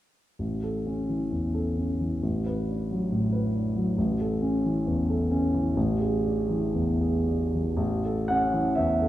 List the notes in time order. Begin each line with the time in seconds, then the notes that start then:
0.39 A1
0.63 A4
0.87 C#4
1.09 E3
1.32 E2
1.54 A4
1.78 C#4
2.01 E3
2.23 A1
2.46 B4
2.69 D4
2.91 F#3
3.12 A2
3.33 B4
3.55 D4
3.76 F#3
3.98 A1
4.21 A4
4.42 C#4
4.66 E3
4.87 E2
5.10 A4
5.31 C#4
5.54 E3
5.77 A1
6.00 G#4
6.25 D4
6.49 E3
6.75 E2
7.01 G#4
7.28 D4
7.55 E3
7.77 A1
8.05 A4
8.28 C#4 F#5
8.53 E3
8.75 E2 E5
9.02 A4